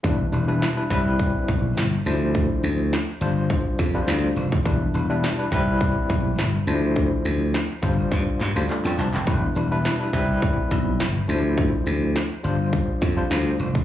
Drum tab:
HH |x-x-x-x-x-x-x-x-|x-x-x-x-x-x-x-x-|x-x-x-x-x-x-x-x-|x-x-x-x-x-x-x-x-|
CP |----------------|----------------|----------------|--------x-x-xxxx|
SD |----o-------o---|----o-------o---|----o-------o---|----o-----------|
BD |o-----o-o-o-----|o-------o-o----o|o-----o-o-o-----|o-----o-o-------|

HH |x-x-x-x-x-x-x-x-|x-x-x-x-x-x-x-x-|
CP |----------------|----------------|
SD |----o-------o---|----o-------o---|
BD |o-----o-o-o-----|o-------o-o----o|